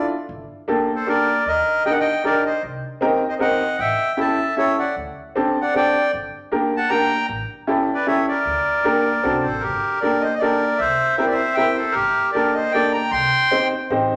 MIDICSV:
0, 0, Header, 1, 4, 480
1, 0, Start_track
1, 0, Key_signature, -2, "minor"
1, 0, Tempo, 389105
1, 352, Time_signature, 3, 2, 24, 8
1, 17468, End_track
2, 0, Start_track
2, 0, Title_t, "Accordion"
2, 0, Program_c, 0, 21
2, 1171, Note_on_c, 0, 69, 41
2, 1183, Note_on_c, 0, 72, 61
2, 1316, Note_off_c, 0, 69, 0
2, 1334, Note_on_c, 0, 70, 62
2, 1336, Note_on_c, 0, 74, 89
2, 1338, Note_off_c, 0, 72, 0
2, 1776, Note_off_c, 0, 70, 0
2, 1819, Note_on_c, 0, 75, 88
2, 1825, Note_off_c, 0, 74, 0
2, 1826, Note_on_c, 0, 70, 83
2, 2262, Note_off_c, 0, 70, 0
2, 2279, Note_off_c, 0, 75, 0
2, 2290, Note_on_c, 0, 79, 106
2, 2298, Note_on_c, 0, 75, 71
2, 2363, Note_on_c, 0, 78, 85
2, 2375, Note_off_c, 0, 75, 0
2, 2380, Note_off_c, 0, 79, 0
2, 2459, Note_off_c, 0, 78, 0
2, 2468, Note_on_c, 0, 79, 94
2, 2473, Note_on_c, 0, 75, 67
2, 2747, Note_off_c, 0, 75, 0
2, 2774, Note_off_c, 0, 79, 0
2, 2775, Note_on_c, 0, 74, 85
2, 2783, Note_on_c, 0, 70, 75
2, 3008, Note_off_c, 0, 74, 0
2, 3012, Note_off_c, 0, 70, 0
2, 3033, Note_on_c, 0, 75, 68
2, 3045, Note_on_c, 0, 72, 50
2, 3232, Note_off_c, 0, 75, 0
2, 3239, Note_off_c, 0, 72, 0
2, 4058, Note_on_c, 0, 75, 68
2, 4060, Note_on_c, 0, 72, 60
2, 4124, Note_off_c, 0, 75, 0
2, 4126, Note_off_c, 0, 72, 0
2, 4206, Note_on_c, 0, 75, 71
2, 4207, Note_on_c, 0, 78, 98
2, 4645, Note_off_c, 0, 75, 0
2, 4686, Note_on_c, 0, 79, 92
2, 4692, Note_on_c, 0, 76, 80
2, 4693, Note_off_c, 0, 78, 0
2, 5128, Note_off_c, 0, 76, 0
2, 5172, Note_off_c, 0, 79, 0
2, 5174, Note_on_c, 0, 76, 74
2, 5186, Note_on_c, 0, 81, 81
2, 5611, Note_off_c, 0, 76, 0
2, 5618, Note_off_c, 0, 81, 0
2, 5653, Note_on_c, 0, 73, 69
2, 5653, Note_on_c, 0, 76, 94
2, 5885, Note_off_c, 0, 73, 0
2, 5907, Note_on_c, 0, 78, 65
2, 5909, Note_off_c, 0, 76, 0
2, 5910, Note_on_c, 0, 74, 50
2, 6109, Note_off_c, 0, 78, 0
2, 6111, Note_off_c, 0, 74, 0
2, 6923, Note_on_c, 0, 78, 75
2, 6937, Note_on_c, 0, 74, 53
2, 7079, Note_off_c, 0, 74, 0
2, 7088, Note_off_c, 0, 78, 0
2, 7108, Note_on_c, 0, 79, 102
2, 7110, Note_on_c, 0, 74, 78
2, 7541, Note_off_c, 0, 79, 0
2, 7542, Note_off_c, 0, 74, 0
2, 8349, Note_on_c, 0, 81, 84
2, 8358, Note_on_c, 0, 78, 58
2, 8503, Note_on_c, 0, 82, 110
2, 8505, Note_off_c, 0, 78, 0
2, 8516, Note_off_c, 0, 81, 0
2, 8520, Note_on_c, 0, 79, 84
2, 8951, Note_off_c, 0, 82, 0
2, 8960, Note_off_c, 0, 79, 0
2, 9794, Note_on_c, 0, 74, 70
2, 9807, Note_on_c, 0, 71, 55
2, 9945, Note_off_c, 0, 71, 0
2, 9952, Note_on_c, 0, 76, 91
2, 9954, Note_off_c, 0, 74, 0
2, 9967, Note_on_c, 0, 73, 67
2, 10186, Note_off_c, 0, 76, 0
2, 10194, Note_off_c, 0, 73, 0
2, 10215, Note_on_c, 0, 74, 75
2, 10240, Note_on_c, 0, 70, 64
2, 11621, Note_off_c, 0, 70, 0
2, 11643, Note_on_c, 0, 72, 63
2, 11676, Note_on_c, 0, 69, 54
2, 11701, Note_off_c, 0, 74, 0
2, 11845, Note_on_c, 0, 70, 73
2, 11874, Note_off_c, 0, 69, 0
2, 11880, Note_off_c, 0, 72, 0
2, 11880, Note_on_c, 0, 67, 71
2, 12328, Note_off_c, 0, 67, 0
2, 12345, Note_on_c, 0, 74, 85
2, 12359, Note_off_c, 0, 70, 0
2, 12377, Note_on_c, 0, 70, 62
2, 12594, Note_on_c, 0, 75, 79
2, 12610, Note_off_c, 0, 70, 0
2, 12619, Note_off_c, 0, 74, 0
2, 12636, Note_on_c, 0, 72, 61
2, 12749, Note_off_c, 0, 75, 0
2, 12763, Note_off_c, 0, 72, 0
2, 12768, Note_on_c, 0, 75, 60
2, 12817, Note_on_c, 0, 74, 86
2, 12844, Note_off_c, 0, 75, 0
2, 12854, Note_on_c, 0, 70, 77
2, 13294, Note_off_c, 0, 70, 0
2, 13295, Note_on_c, 0, 76, 95
2, 13324, Note_off_c, 0, 74, 0
2, 13332, Note_on_c, 0, 72, 63
2, 13750, Note_off_c, 0, 76, 0
2, 13768, Note_on_c, 0, 76, 88
2, 13770, Note_off_c, 0, 72, 0
2, 13810, Note_on_c, 0, 72, 65
2, 13876, Note_off_c, 0, 76, 0
2, 13887, Note_off_c, 0, 72, 0
2, 13897, Note_on_c, 0, 74, 70
2, 13951, Note_on_c, 0, 76, 86
2, 13981, Note_off_c, 0, 74, 0
2, 13984, Note_on_c, 0, 72, 68
2, 14246, Note_on_c, 0, 79, 105
2, 14255, Note_off_c, 0, 72, 0
2, 14264, Note_off_c, 0, 76, 0
2, 14282, Note_on_c, 0, 76, 83
2, 14489, Note_on_c, 0, 72, 73
2, 14514, Note_off_c, 0, 76, 0
2, 14521, Note_off_c, 0, 79, 0
2, 14525, Note_on_c, 0, 69, 59
2, 14698, Note_on_c, 0, 70, 91
2, 14732, Note_off_c, 0, 69, 0
2, 14736, Note_off_c, 0, 72, 0
2, 14740, Note_on_c, 0, 67, 68
2, 15165, Note_off_c, 0, 70, 0
2, 15187, Note_off_c, 0, 67, 0
2, 15202, Note_on_c, 0, 74, 77
2, 15235, Note_on_c, 0, 70, 65
2, 15462, Note_on_c, 0, 75, 75
2, 15468, Note_off_c, 0, 70, 0
2, 15476, Note_off_c, 0, 74, 0
2, 15500, Note_on_c, 0, 72, 72
2, 15690, Note_on_c, 0, 79, 106
2, 15698, Note_off_c, 0, 72, 0
2, 15701, Note_off_c, 0, 75, 0
2, 15711, Note_on_c, 0, 74, 83
2, 15942, Note_on_c, 0, 82, 87
2, 15945, Note_off_c, 0, 74, 0
2, 15945, Note_off_c, 0, 79, 0
2, 15963, Note_on_c, 0, 79, 66
2, 16169, Note_off_c, 0, 79, 0
2, 16177, Note_on_c, 0, 84, 114
2, 16180, Note_off_c, 0, 82, 0
2, 16197, Note_on_c, 0, 79, 77
2, 16868, Note_off_c, 0, 84, 0
2, 16878, Note_off_c, 0, 79, 0
2, 17468, End_track
3, 0, Start_track
3, 0, Title_t, "Upright piano"
3, 0, Program_c, 1, 0
3, 0, Note_on_c, 1, 62, 60
3, 0, Note_on_c, 1, 64, 57
3, 0, Note_on_c, 1, 65, 61
3, 0, Note_on_c, 1, 69, 61
3, 124, Note_off_c, 1, 62, 0
3, 127, Note_off_c, 1, 64, 0
3, 127, Note_off_c, 1, 65, 0
3, 128, Note_off_c, 1, 69, 0
3, 835, Note_on_c, 1, 58, 72
3, 835, Note_on_c, 1, 62, 61
3, 843, Note_on_c, 1, 67, 60
3, 845, Note_on_c, 1, 69, 77
3, 1096, Note_off_c, 1, 58, 0
3, 1096, Note_off_c, 1, 62, 0
3, 1100, Note_off_c, 1, 67, 0
3, 1101, Note_off_c, 1, 69, 0
3, 1314, Note_on_c, 1, 58, 58
3, 1318, Note_on_c, 1, 62, 53
3, 1321, Note_on_c, 1, 67, 57
3, 1323, Note_on_c, 1, 69, 57
3, 1576, Note_off_c, 1, 58, 0
3, 1578, Note_off_c, 1, 62, 0
3, 1579, Note_off_c, 1, 67, 0
3, 1580, Note_off_c, 1, 69, 0
3, 2286, Note_on_c, 1, 62, 60
3, 2286, Note_on_c, 1, 63, 57
3, 2289, Note_on_c, 1, 67, 51
3, 2297, Note_on_c, 1, 70, 61
3, 2541, Note_off_c, 1, 62, 0
3, 2541, Note_off_c, 1, 63, 0
3, 2543, Note_off_c, 1, 67, 0
3, 2547, Note_off_c, 1, 70, 0
3, 2758, Note_on_c, 1, 62, 66
3, 2770, Note_on_c, 1, 63, 52
3, 2770, Note_on_c, 1, 67, 58
3, 2772, Note_on_c, 1, 70, 67
3, 3017, Note_off_c, 1, 62, 0
3, 3023, Note_off_c, 1, 63, 0
3, 3023, Note_off_c, 1, 67, 0
3, 3024, Note_off_c, 1, 70, 0
3, 3710, Note_on_c, 1, 60, 72
3, 3721, Note_on_c, 1, 63, 71
3, 3722, Note_on_c, 1, 67, 68
3, 3724, Note_on_c, 1, 70, 89
3, 3969, Note_off_c, 1, 60, 0
3, 3974, Note_off_c, 1, 63, 0
3, 3975, Note_off_c, 1, 67, 0
3, 3976, Note_off_c, 1, 70, 0
3, 4183, Note_on_c, 1, 60, 68
3, 4187, Note_on_c, 1, 63, 52
3, 4194, Note_on_c, 1, 67, 63
3, 4196, Note_on_c, 1, 70, 65
3, 4444, Note_off_c, 1, 60, 0
3, 4446, Note_off_c, 1, 63, 0
3, 4450, Note_off_c, 1, 67, 0
3, 4450, Note_off_c, 1, 70, 0
3, 5144, Note_on_c, 1, 61, 59
3, 5149, Note_on_c, 1, 64, 61
3, 5149, Note_on_c, 1, 67, 53
3, 5153, Note_on_c, 1, 69, 66
3, 5404, Note_off_c, 1, 61, 0
3, 5407, Note_off_c, 1, 64, 0
3, 5407, Note_off_c, 1, 67, 0
3, 5409, Note_off_c, 1, 69, 0
3, 5631, Note_on_c, 1, 61, 55
3, 5637, Note_on_c, 1, 64, 52
3, 5639, Note_on_c, 1, 67, 43
3, 5645, Note_on_c, 1, 69, 55
3, 5891, Note_off_c, 1, 61, 0
3, 5894, Note_off_c, 1, 64, 0
3, 5895, Note_off_c, 1, 67, 0
3, 5898, Note_off_c, 1, 69, 0
3, 6605, Note_on_c, 1, 60, 74
3, 6609, Note_on_c, 1, 62, 68
3, 6613, Note_on_c, 1, 67, 60
3, 6619, Note_on_c, 1, 69, 80
3, 6861, Note_off_c, 1, 60, 0
3, 6863, Note_off_c, 1, 62, 0
3, 6865, Note_off_c, 1, 67, 0
3, 6868, Note_off_c, 1, 69, 0
3, 7082, Note_on_c, 1, 60, 58
3, 7091, Note_on_c, 1, 62, 62
3, 7094, Note_on_c, 1, 67, 54
3, 7096, Note_on_c, 1, 69, 60
3, 7339, Note_off_c, 1, 60, 0
3, 7344, Note_off_c, 1, 62, 0
3, 7345, Note_off_c, 1, 67, 0
3, 7346, Note_off_c, 1, 69, 0
3, 8037, Note_on_c, 1, 62, 60
3, 8038, Note_on_c, 1, 58, 63
3, 8042, Note_on_c, 1, 67, 69
3, 8047, Note_on_c, 1, 70, 70
3, 8292, Note_off_c, 1, 58, 0
3, 8292, Note_off_c, 1, 62, 0
3, 8295, Note_off_c, 1, 67, 0
3, 8297, Note_off_c, 1, 70, 0
3, 8510, Note_on_c, 1, 62, 60
3, 8512, Note_on_c, 1, 58, 58
3, 8516, Note_on_c, 1, 67, 64
3, 8522, Note_on_c, 1, 70, 64
3, 8768, Note_off_c, 1, 58, 0
3, 8768, Note_off_c, 1, 62, 0
3, 8770, Note_off_c, 1, 67, 0
3, 8773, Note_off_c, 1, 70, 0
3, 9465, Note_on_c, 1, 61, 68
3, 9466, Note_on_c, 1, 64, 69
3, 9473, Note_on_c, 1, 67, 70
3, 9481, Note_on_c, 1, 69, 77
3, 9722, Note_off_c, 1, 61, 0
3, 9722, Note_off_c, 1, 64, 0
3, 9726, Note_off_c, 1, 67, 0
3, 9730, Note_off_c, 1, 69, 0
3, 9950, Note_on_c, 1, 61, 69
3, 9950, Note_on_c, 1, 64, 51
3, 9952, Note_on_c, 1, 67, 54
3, 9957, Note_on_c, 1, 69, 60
3, 10203, Note_off_c, 1, 61, 0
3, 10203, Note_off_c, 1, 64, 0
3, 10204, Note_off_c, 1, 67, 0
3, 10207, Note_off_c, 1, 69, 0
3, 10907, Note_on_c, 1, 62, 63
3, 10911, Note_on_c, 1, 58, 72
3, 10915, Note_on_c, 1, 67, 62
3, 10919, Note_on_c, 1, 70, 80
3, 11165, Note_off_c, 1, 62, 0
3, 11167, Note_off_c, 1, 58, 0
3, 11169, Note_off_c, 1, 67, 0
3, 11171, Note_off_c, 1, 70, 0
3, 11390, Note_on_c, 1, 60, 69
3, 11394, Note_on_c, 1, 62, 57
3, 11396, Note_on_c, 1, 66, 64
3, 11401, Note_on_c, 1, 69, 74
3, 11650, Note_off_c, 1, 60, 0
3, 11652, Note_off_c, 1, 62, 0
3, 11653, Note_off_c, 1, 66, 0
3, 11656, Note_off_c, 1, 69, 0
3, 12365, Note_on_c, 1, 58, 66
3, 12366, Note_on_c, 1, 62, 58
3, 12373, Note_on_c, 1, 67, 56
3, 12377, Note_on_c, 1, 69, 59
3, 12621, Note_off_c, 1, 58, 0
3, 12621, Note_off_c, 1, 62, 0
3, 12625, Note_off_c, 1, 67, 0
3, 12627, Note_off_c, 1, 69, 0
3, 12846, Note_on_c, 1, 62, 57
3, 12848, Note_on_c, 1, 58, 62
3, 12851, Note_on_c, 1, 67, 59
3, 12851, Note_on_c, 1, 69, 67
3, 13101, Note_off_c, 1, 62, 0
3, 13102, Note_off_c, 1, 58, 0
3, 13103, Note_off_c, 1, 67, 0
3, 13103, Note_off_c, 1, 69, 0
3, 13790, Note_on_c, 1, 64, 55
3, 13791, Note_on_c, 1, 60, 62
3, 13795, Note_on_c, 1, 67, 56
3, 13801, Note_on_c, 1, 70, 66
3, 14047, Note_off_c, 1, 64, 0
3, 14048, Note_off_c, 1, 60, 0
3, 14050, Note_off_c, 1, 67, 0
3, 14053, Note_off_c, 1, 70, 0
3, 14271, Note_on_c, 1, 60, 54
3, 14276, Note_on_c, 1, 64, 59
3, 14277, Note_on_c, 1, 67, 66
3, 14280, Note_on_c, 1, 70, 58
3, 14525, Note_off_c, 1, 60, 0
3, 14528, Note_off_c, 1, 64, 0
3, 14528, Note_off_c, 1, 67, 0
3, 14530, Note_off_c, 1, 70, 0
3, 15221, Note_on_c, 1, 58, 64
3, 15229, Note_on_c, 1, 62, 55
3, 15232, Note_on_c, 1, 69, 67
3, 15234, Note_on_c, 1, 67, 58
3, 15478, Note_off_c, 1, 58, 0
3, 15482, Note_off_c, 1, 62, 0
3, 15484, Note_off_c, 1, 69, 0
3, 15485, Note_off_c, 1, 67, 0
3, 15709, Note_on_c, 1, 58, 61
3, 15715, Note_on_c, 1, 62, 50
3, 15719, Note_on_c, 1, 69, 67
3, 15720, Note_on_c, 1, 67, 60
3, 15962, Note_off_c, 1, 58, 0
3, 15965, Note_off_c, 1, 62, 0
3, 15967, Note_off_c, 1, 67, 0
3, 15967, Note_off_c, 1, 69, 0
3, 16667, Note_on_c, 1, 60, 62
3, 16668, Note_on_c, 1, 63, 55
3, 16670, Note_on_c, 1, 67, 57
3, 16673, Note_on_c, 1, 72, 66
3, 16922, Note_off_c, 1, 60, 0
3, 16923, Note_off_c, 1, 63, 0
3, 16924, Note_off_c, 1, 67, 0
3, 16925, Note_off_c, 1, 72, 0
3, 17152, Note_on_c, 1, 63, 66
3, 17154, Note_on_c, 1, 60, 63
3, 17160, Note_on_c, 1, 67, 61
3, 17168, Note_on_c, 1, 72, 63
3, 17408, Note_off_c, 1, 63, 0
3, 17409, Note_off_c, 1, 60, 0
3, 17412, Note_off_c, 1, 67, 0
3, 17416, Note_off_c, 1, 72, 0
3, 17468, End_track
4, 0, Start_track
4, 0, Title_t, "Upright bass"
4, 0, Program_c, 2, 32
4, 358, Note_on_c, 2, 31, 81
4, 526, Note_off_c, 2, 31, 0
4, 1802, Note_on_c, 2, 39, 84
4, 1969, Note_off_c, 2, 39, 0
4, 3244, Note_on_c, 2, 36, 75
4, 3408, Note_off_c, 2, 36, 0
4, 4676, Note_on_c, 2, 33, 92
4, 4841, Note_off_c, 2, 33, 0
4, 6124, Note_on_c, 2, 38, 68
4, 6290, Note_off_c, 2, 38, 0
4, 7568, Note_on_c, 2, 31, 74
4, 7732, Note_off_c, 2, 31, 0
4, 8991, Note_on_c, 2, 33, 95
4, 9156, Note_off_c, 2, 33, 0
4, 10431, Note_on_c, 2, 38, 82
4, 10596, Note_off_c, 2, 38, 0
4, 11403, Note_on_c, 2, 36, 77
4, 11631, Note_off_c, 2, 36, 0
4, 11657, Note_on_c, 2, 33, 63
4, 11883, Note_on_c, 2, 31, 85
4, 11902, Note_off_c, 2, 33, 0
4, 12049, Note_off_c, 2, 31, 0
4, 13319, Note_on_c, 2, 36, 76
4, 13485, Note_off_c, 2, 36, 0
4, 14748, Note_on_c, 2, 31, 97
4, 14914, Note_off_c, 2, 31, 0
4, 16177, Note_on_c, 2, 36, 91
4, 16345, Note_off_c, 2, 36, 0
4, 17151, Note_on_c, 2, 33, 83
4, 17382, Note_off_c, 2, 33, 0
4, 17394, Note_on_c, 2, 31, 62
4, 17468, Note_off_c, 2, 31, 0
4, 17468, End_track
0, 0, End_of_file